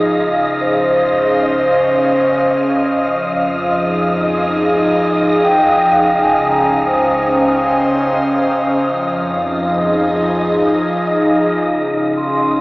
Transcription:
0.00 0.12 F3 medium
0.00 1.30 D#4 medium
0.00 1.29 G#4 medium
0.00 11.68 D#5 medium
0.00 12.61 F5 medium
0.00 11.68 D#6 medium
0.11 2.97 C#2 medium
0.11 3.02 C#3 medium
0.55 4.18 C5 medium
0.61 2.00 C5 medium
1.09 3.04 C#4 medium
3.02 5.86 F2 medium
3.02 5.91 F3 medium
3.60 7.04 G#4 medium
3.68 7.06 D#4 medium
5.43 6.35 G5 medium
5.90 8.73 C#2 medium
5.90 8.77 C#3 medium
5.90 7.28 F5 medium
6.21 7.55 G#5 soft
6.40 8.78 C#4 medium
6.49 7.81 A#5 soft
6.87 8.24 C5 medium
7.19 9.93 C5 medium
8.77 11.64 F2 medium
8.77 11.69 F3 medium
9.28 12.61 D#4 medium
9.44 12.61 G#4 medium
9.74 11.14 D#5 soft
11.67 12.61 C#3 medium
11.67 12.61 D#5 medium
11.67 12.61 D#6 medium
12.07 12.61 C#4 medium
12.17 12.61 C6 soft

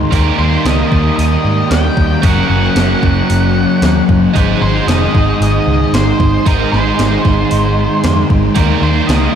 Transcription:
0.00 0.10 G#3 medium
0.00 0.11 D#4 medium
0.00 0.11 G#4 loud
0.00 0.12 C5 medium
0.11 0.30 D#2 medium
0.11 2.21 D#3 medium
0.11 2.22 G3 medium
0.11 2.22 A#3 medium
0.11 2.22 D#4 loud
0.11 2.23 G4 loud
0.11 2.23 A#4 loud
0.11 kick loud
0.11 open hi-hat medium
0.39 0.56 D#2 medium
0.39 0.66 C5 medium
0.65 0.82 C#2 medium
0.65 1.15 D#5 loud
0.65 snare loud
0.65 open hi-hat soft
0.92 1.09 D#2 medium
0.92 kick medium
1.16 1.36 D#2 medium
1.16 1.71 D#5 medium
1.16 open hi-hat soft
1.44 1.62 G#2 medium
1.71 1.88 D#2 medium
1.71 2.25 G5 loud
1.71 snare loud
1.71 open hi-hat medium
1.97 2.15 D#2 medium
1.97 kick medium
2.22 2.41 F#1 medium
2.22 4.32 F#2 medium
2.22 4.33 C#3 medium
2.22 4.32 F#3 medium
2.22 4.33 A#3 medium
2.22 4.33 C#4 loud
2.22 4.33 F#4 medium
2.22 4.34 A#4 loud
2.22 2.47 F#5 medium
2.22 kick loud
2.22 open hi-hat medium
2.48 2.67 F#1 medium
2.48 4.03 F#5 medium
2.76 2.93 F#1 medium
2.76 snare loud
2.76 open hi-hat medium
3.03 3.20 F#1 medium
3.03 kick medium
3.30 3.65 F#1 medium
3.30 open hi-hat medium
3.82 4.00 D#2 medium
3.82 snare medium
3.82 open hi-hat medium
4.09 4.26 F#1 medium
4.09 kick medium
4.33 4.53 G#1 medium
4.33 6.43 G#2 medium
4.33 6.45 D#3 medium
4.33 6.43 G#3 medium
4.33 6.46 D#4 medium
4.33 6.45 G#4 loud
4.33 6.45 C5 loud
4.33 kick loud
4.33 open hi-hat medium
4.62 4.79 G#1 medium
4.62 4.89 C5 medium
4.88 5.05 F1 medium
4.88 5.37 D#5 medium
4.88 snare loud
4.88 open hi-hat medium
5.15 5.32 G#1 medium
5.15 kick medium
5.41 5.58 G#1 medium
5.41 5.96 D#5 loud
5.41 open hi-hat soft
5.67 5.84 C#2 medium
5.93 6.11 G#1 medium
5.93 6.47 C5 medium
5.93 snare loud
5.93 open hi-hat medium
6.20 6.37 G#1 medium
6.20 kick medium
6.45 6.63 G#1 medium
6.45 8.54 G#2 medium
6.45 8.54 D#3 medium
6.45 8.55 G#3 medium
6.45 8.56 D#4 medium
6.45 8.56 G#4 medium
6.45 6.71 A#4 medium
6.45 8.56 C5 loud
6.45 kick loud
6.45 open hi-hat medium
6.72 6.90 G#1 medium
6.72 8.26 C5 medium
6.72 snare soft
6.99 7.16 G#1 medium
6.99 snare loud
6.99 open hi-hat medium
7.25 7.42 G#1 medium
7.25 kick medium
7.25 snare soft
7.51 7.87 G#1 medium
7.51 open hi-hat soft
8.04 8.21 F2 medium
8.04 snare loud
8.04 open hi-hat medium
8.30 8.48 G#1 medium
8.30 kick medium
8.54 8.74 D#2 medium
8.54 9.35 D#3 medium
8.54 9.35 G3 loud
8.54 9.35 A#3 medium
8.54 9.35 D#4 medium
8.54 9.35 G4 medium
8.54 9.35 A#4 loud
8.54 kick loud
8.54 open hi-hat medium
8.82 9.00 D#2 medium
8.82 9.10 C5 medium
9.07 9.26 C#2 medium
9.07 9.35 D#5 medium
9.07 snare loud
9.07 open hi-hat medium

